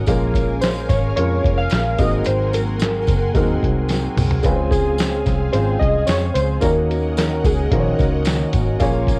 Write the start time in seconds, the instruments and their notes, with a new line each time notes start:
Already playing: string machine A#4
0.07 picked electric bass A#1, steel-string acoustic guitar A#2 F3 G#3 C#4, upright piano G#3 A#3 C#4 F4 A#4, string machine F5 G#5, kick, closed hi-hat, tambourine
0.34 steel-string acoustic guitar F3 G#3 C#4, kick, closed hi-hat, tambourine
0.61 steel-string acoustic guitar A#2 F3 G#3 C#4, synth keys C5, snare, closed hi-hat, tambourine
0.89 picked electric bass G#1, steel-string acoustic guitar F3 G#3 C#4, synth keys C#5, kick, snare, closed hi-hat, tambourine
1.16 picked electric bass F2, steel-string acoustic guitar A#2 F3 G#3 C#4, upright piano G#3 A#3 C#4 F4 A#4, synth keys C#5, closed hi-hat
1.43 picked electric bass F1, steel-string acoustic guitar F3 G#3 C#4, kick, closed hi-hat
1.58 synth keys F5
1.70 picked electric bass A#1, steel-string acoustic guitar A#2 F3 G#3 C#4, snare, closed hi-hat, tambourine
1.98 picked electric bass G#1, steel-string acoustic guitar F#3 A#3 C4, upright piano G#3 C4 D#4 F#4 A#4, synth keys D#5, string machine F#5 C6, kick, closed hi-hat, tambourine
2.24 picked electric bass G#1, steel-string acoustic guitar G#2 F#3 A#3 C4, synth keys C5, closed hi-hat, tambourine
2.52 steel-string acoustic guitar F#3 A#3 C4, synth keys A#4, closed hi-hat, tambourine
2.79 steel-string acoustic guitar G#2 F#3 A#3 C4, snare, closed hi-hat, tambourine
3.07 picked electric bass F#1, steel-string acoustic guitar F#3 A#3 C4, kick, closed hi-hat, tambourine
3.33 picked electric bass D#2, steel-string acoustic guitar G#2 F#3 A#3 C4, upright piano G#3 C4 D#4 F#4 A#4, kick, closed hi-hat, tambourine
3.61 picked electric bass C2, steel-string acoustic guitar F#3 A#3 C4, kick, closed hi-hat
3.88 steel-string acoustic guitar G#2 F#3 A#3 C4, snare, closed hi-hat, tambourine
4.16 picked electric bass C2, steel-string acoustic guitar F#3 A#3 C4, mid tom, open hi-hat, tambourine
4.31 floor tom
4.43 picked electric bass C#2, steel-string acoustic guitar C#3 F3 G#3 C4, upright piano G#3 C4 C#4 F4 B4, string machine G#4 F5, kick, closed hi-hat, tambourine
4.52 upright piano C5
4.71 steel-string acoustic guitar F3 G#3 C4, synth keys G#4, kick, closed hi-hat, tambourine
4.97 steel-string acoustic guitar C#3 F3 G#3 C4, snare, closed hi-hat, tambourine
5.25 picked electric bass C2, steel-string acoustic guitar F3 G#3 C4, kick, snare, closed hi-hat, tambourine
5.52 picked electric bass G#1, steel-string acoustic guitar C#3 F3 G#3 C4, upright piano G#3 C4 C#4 F4 C5, synth keys C5, closed hi-hat, tambourine
5.79 picked electric bass C2, steel-string acoustic guitar F3 G#3 C4, synth keys D#5, kick, closed hi-hat
6.07 picked electric bass F2, steel-string acoustic guitar C#3 F3 G#3 C4, synth keys C#5, snare, closed hi-hat, tambourine
6.34 picked electric bass C#2, steel-string acoustic guitar F3 G#3 C4, synth keys C5, closed hi-hat, tambourine
6.60 picked electric bass D#2, steel-string acoustic guitar D#3 A#3 C#4 F#4, upright piano A#3 C#4 D#4 F#4 C#5, synth keys A#4, string machine A#4 D#5 F#5, kick, closed hi-hat, tambourine
6.89 steel-string acoustic guitar A#3 C#4 F#4, closed hi-hat, tambourine
7.16 steel-string acoustic guitar D#3 A#3 C#4 F#4, synth keys A#4, snare, closed hi-hat, tambourine
7.43 picked electric bass C#2, steel-string acoustic guitar A#3 C#4 F#4, synth keys G#4, kick, closed hi-hat, tambourine
7.71 picked electric bass A#1, steel-string acoustic guitar D#3 A#3 C#4 F#4, upright piano A#3 C#4 D#4 F#4 C5, synth keys A#4, kick, closed hi-hat
7.79 upright piano C#5
7.98 picked electric bass C#2, steel-string acoustic guitar A#3 C#4 F#4, kick, closed hi-hat, tambourine
8.25 steel-string acoustic guitar D#3 A#3 C#4 F#4, snare, closed hi-hat, tambourine
8.53 picked electric bass G#1, steel-string acoustic guitar A#3 C#4 F#4, kick, closed hi-hat, tambourine
8.80 picked electric bass A#1, steel-string acoustic guitar A#2 F3 G#3 C#4, upright piano A#3 C#4 F4 G#4 C#5, string machine A#4 F5 G#5, kick, closed hi-hat, tambourine
9.07 steel-string acoustic guitar F3 G#3 C#4, kick, closed hi-hat, tambourine